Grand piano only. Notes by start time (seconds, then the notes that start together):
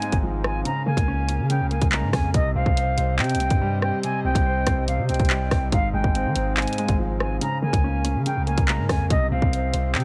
Already playing: G#2 G#3 C4
0.02 G#3
0.23 F3
0.65 C#3
0.86 A#3
1.08 C#4
1.28 C#4
1.50 C#3
1.71 A#3
1.92 G#3
2.34 C3
2.56 C4
2.77 C5
2.97 C5
3.19 C3
3.40 C4
3.61 G3
4.04 C3
4.25 C4
4.46 C5
4.67 C5
4.88 C3
5.09 C4
5.30 G3
5.73 G#2
5.93 G#3
6.15 C4
6.36 C4
6.57 G#2
6.78 G#3
6.99 F3
7.41 C#3
7.62 A#3
7.84 C#4
8.04 C#4
8.26 C#3
8.47 A#3
8.68 G#3
9.10 C3
9.32 C4
9.53 C5
9.73 C5
9.95 C3